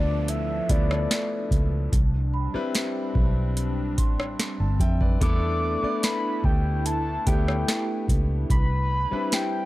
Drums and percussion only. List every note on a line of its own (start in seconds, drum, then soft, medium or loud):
0.28 closed hi-hat medium
0.69 kick loud
0.69 closed hi-hat medium
0.91 cross-stick loud
1.11 snare loud
1.11 closed hi-hat medium
1.51 kick medium
1.51 closed hi-hat medium
1.93 kick loud
1.93 closed hi-hat medium
2.75 snare loud
2.75 closed hi-hat medium
3.15 kick medium
3.57 closed hi-hat medium
3.98 kick loud
3.98 closed hi-hat medium
4.20 cross-stick loud
4.39 snare loud
4.39 closed hi-hat medium
4.80 kick medium
4.80 closed hi-hat medium
5.01 kick loud
5.21 kick loud
5.21 closed hi-hat medium
6.03 snare loud
6.03 closed hi-hat medium
6.44 kick medium
6.86 closed hi-hat medium
7.27 kick loud
7.27 closed hi-hat medium
7.48 cross-stick loud
7.68 snare loud
7.68 closed hi-hat medium
8.08 kick medium
8.08 closed hi-hat medium
8.50 kick loud
8.50 closed hi-hat medium
9.32 snare loud
9.32 closed hi-hat medium